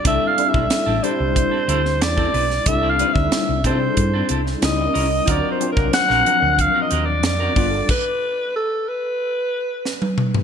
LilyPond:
<<
  \new Staff \with { instrumentName = "Alto saxophone" } { \time 4/4 \key g \mixolydian \tempo 4 = 92 \tuplet 3/2 { e''8 f''8 e''8~ } e''8 c''4. d''4 | \tuplet 3/2 { e''8 f''8 e''8~ } e''8 c''4 r8 ees''4 | \tuplet 3/2 { d''8 c''8 ais'8 } fis''4 \tuplet 3/2 { eis''8 ees''8 d''8 } d''4 | b'4 a'8 b'2 r8 | }
  \new Staff \with { instrumentName = "Clean electric guitar" } { \time 4/4 \key g \mixolydian <c' e' a'>8 r16 <c' e' a'>16 r16 <c' e' a'>16 <c' e' a'>16 r8 <c' e' a'>16 <c' e' a'>16 r8 <c' e' a'>16 <c' e' b'>16 r16 | r16 <c' e' a'>16 <c' e' b'>16 r8. <c' e' a'>16 r8 <c' e' a'>16 <c' e' a'>16 r8. <cis' e' ais'>16 r16 | <c' fis' ais'>8 r16 <c' fis' ais'>16 r16 <c' fis' ais'>16 <c' fis' ais'>16 r8 <c' fis' ais'>16 <c' fis' ais'>16 r8 <c' fis' ais'>16 <b f' b'>16 r16 | r1 | }
  \new Staff \with { instrumentName = "Tine electric piano" } { \time 4/4 \key g \mixolydian <g c' d' e' a'>8 <g c' d' e' a'>4 <g c' d' e' g'>4. r4 | <g c' d' e' a'>8 <g c' d' ees' e' c''>4 <g c' d' e' aes' a'>4. <g cis' ees' e' ais'>4 | <fis c' d' eis' ais'>8 <fis c' d' eis' c''>4 <eis fis c' d' ais'>4. r8 <g b d' f' a'>8 | r1 | }
  \new Staff \with { instrumentName = "Fingered electric bass" } { \clef bass \time 4/4 \key g \mixolydian c,16 r8 b,,16 r16 a,,16 r16 c,8 r16 d,8 e,8 b,,8 | c,8. d,16 r16 c,16 c8 g,8 c,8 cis,8 c,8 | d,16 r8 c,16 r16 ais,,16 r16 d,8 r16 ees,8 eis,8 g,,8 | r1 | }
  \new DrumStaff \with { instrumentName = "Drums" } \drummode { \time 4/4 <hh bd>8 hh16 bd16 <hh sn>8 hh8 <hh bd>8 hh16 sn16 <hh sn>16 bd16 hho16 sn16 | <hh bd>8 hh16 bd16 <hh sn>8 <hh bd>8 <hh bd>8 hh16 sn16 <hh sn>8 hho8 | <hh bd>8 hh16 bd16 <hh sn>16 sn16 hh8 <hh bd>8 hh8 <hh sn>8 <hho bd>8 | <cymc bd>4 r4 r4 sn16 tommh16 toml16 tomfh16 | }
>>